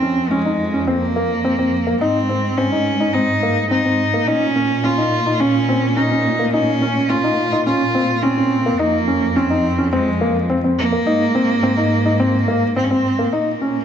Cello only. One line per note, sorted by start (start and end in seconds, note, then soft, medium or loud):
0.00 0.31 C4 medium
0.30 0.88 G#3 medium
0.87 2.00 A#3 medium
2.01 2.59 C4 medium
2.57 3.15 C#4 medium
3.13 3.70 D#4 medium
3.71 4.28 D#4 medium
4.27 4.85 C#4 loud
4.84 5.42 F4 loud
5.40 5.98 C#4 loud
5.97 6.53 D#4 loud
6.53 7.11 C#4 loud
7.09 7.65 F4 loud
7.66 8.24 F4 loud
8.23 8.81 C4 medium
8.80 9.39 A#3 loud
9.37 9.93 C4 medium
9.94 10.46 G#3 medium
10.78 12.73 A#3 loud
12.77 12.86 C4 medium
12.84 12.92 C#4 medium
12.91 13.36 C4 medium
13.34 13.85 A#3 medium